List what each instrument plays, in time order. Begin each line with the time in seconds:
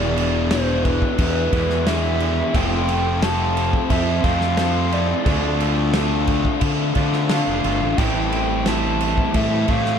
Already playing: fingered electric bass E1, clean electric guitar E2 B2 E3 G#3 D4 E4, overdriven electric guitar E2 B2 E3 B3 D4 G#4, soft synth lead D5
0.17 clean electric guitar E3 G#3 D4 E4, crash
0.50 clean electric guitar E3 G#3 D4 E4, overdriven electric guitar E3 B3 D4 G#4, soft synth lead C5, snare, crash
0.83 soft synth lead B4, kick, crash
1.02 kick
1.18 fingered electric bass E2, overdriven electric guitar E3 B3 D4 G#4, kick, crash
1.52 fingered electric bass E2, overdriven electric guitar E2 B2 E3, clean electric guitar E3 G#3 D4 E4, kick, crash
1.70 snare
1.86 overdriven electric guitar E2 B2 E3 B3 D4 G#4, clean electric guitar E3 G#3 D4 E4, soft synth lead E5, snare, crash
2.20 clean electric guitar E3 G#3 D4 E4, crash
2.54 fingered electric bass F1, overdriven electric guitar F2 C3 F3 A3 C4 F4 A4, clean electric guitar F3 A3 C4, soft synth lead G5, kick, crash
2.89 clean electric guitar A3 C4, crash
3.22 clean electric guitar F3 A3 C4, overdriven electric guitar A3 C4 F4 A4, soft synth lead A5, snare, crash
3.57 crash
3.73 kick
3.90 fingered electric bass F2, overdriven electric guitar F3 A3 C4 F4 A4, soft synth lead E5, kick, crash
4.24 fingered electric bass F2, overdriven electric guitar F2 C3 F3, clean electric guitar A3 C4, soft synth lead F5, kick, crash
4.41 snare
4.57 overdriven electric guitar F2 C3 F3 A3 C4 F4 A4, clean electric guitar F3 A3 C4, snare, crash
4.92 clean electric guitar A3 C4 E4, soft synth lead D5, crash
5.25 fingered electric bass D2, clean electric guitar D3 A3 C4 F4, overdriven electric guitar D3 A3 D4 F4 A4, kick, crash
5.60 clean electric guitar A3 C4 F4, crash
5.94 clean electric guitar D3 A3 C4 F4, overdriven electric guitar A3 D4 F4 A4, snare, crash
6.27 kick, crash
6.45 kick
6.61 overdriven electric guitar D3 A3 D4 F4 A4, fingered electric bass D3, kick, crash
6.95 fingered electric bass D3, overdriven electric guitar D3 A3 D4, clean electric guitar A3 C4 F4, kick, crash
7.13 snare
7.28 overdriven electric guitar D3 A3 D4 F4, clean electric guitar D3 A3 C4, soft synth lead F5, snare, crash
7.33 clean electric guitar F4, overdriven electric guitar A4
7.47 fingered electric bass F1
7.64 fingered electric bass G1, clean electric guitar A3 C4 F4, crash
7.82 fingered electric bass A1
7.97 fingered electric bass A1, overdriven electric guitar A2 E3 A3 C4 E4 A4, clean electric guitar A2 E3 G3 C4, soft synth lead G5, kick, crash
8.02 clean electric guitar E4
8.32 clean electric guitar G3 C4 E4, crash
8.66 clean electric guitar E3 G3 C4 E4, overdriven electric guitar A3 C4 E4 A4, soft synth lead A5, snare, crash
9.01 crash
9.18 kick
9.34 fingered electric bass A2, overdriven electric guitar A2 E3 A3 C4 E4 A4, soft synth lead E5, kick, crash
9.68 fingered electric bass A2, overdriven electric guitar A2 E3 A3, clean electric guitar G3 C4 E4, soft synth lead F5, kick, crash
9.85 snare